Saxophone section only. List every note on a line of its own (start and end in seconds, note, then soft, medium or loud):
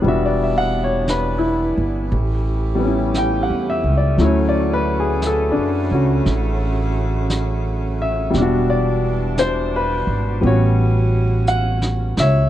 0.00 4.03 E3 medium
0.00 2.08 B3 medium
0.00 2.08 D4 medium
2.11 8.31 A3 medium
2.11 8.30 C#4 medium
2.11 4.03 G4 medium
4.20 8.31 C#3 medium
4.20 8.31 F#4 medium
8.34 12.49 B2 medium
8.34 10.42 E3 medium
8.34 10.41 D4 medium
10.41 12.49 C#4 medium
10.41 12.49 F#4 medium